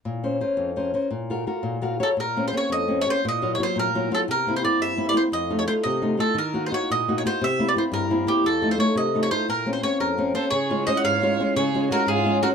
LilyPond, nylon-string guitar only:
\new Staff \with { instrumentName = "Nylon-string guitar" } { \time 6/8 \key bes \minor \tempo 4. = 115 bes,8 <des' bes' c''>8 <des' bes' c''>8 f,8 <des' bes' c''>8 <des' bes' c''>8 | bes,8 <f' ges' bes'>8 <f' ges' bes'>8 bes,8 <f' ges' bes' f''>8 <f' ges' bes' des''>8 | bes,8 <bes c' des'>8 <bes c' des'>8 f,8 <bes c' des'>8 <bes c' des'>8 | bes,8 <ges bes f'>8 <ges bes f'>8 bes,8 <ges bes f'>8 <ges bes f'>8 |
c8 <bes c' e'>8 <bes c' e'>8 g,8 <bes c' e'>8 <bes c' e'>8 | f,8 <a ees' f'>8 <a ees' f'>8 c8 <a ees' f'>8 <a ees' f'>8 | ees8 <bes ees' ges'>8 <bes ees' ges'>8 bes,8 <bes ees' ges'>8 <bes ees' ges'>8 | c8 <bes c' e'>8 <bes c' e'>8 g,8 <bes c' e'>8 <bes c' e'>8 |
f,8 <a ees' f'>8 <a ees' f'>8 c8 <a ees' f'>8 <a ees' f'>8 | bes,8 <bes c' des'>8 <bes c' des'>8 f,8 <bes c' des'>8 <bes c' des'>8 | \key des \major des8 <aes des' f'>8 <aes des' f'>8 aes,8 <aes des' f'>8 <aes des' f'>8 | des8 <aes des' f'>8 <aes des' f'>8 aes,8 <aes des' f'>8 <aes des' f'>8 | }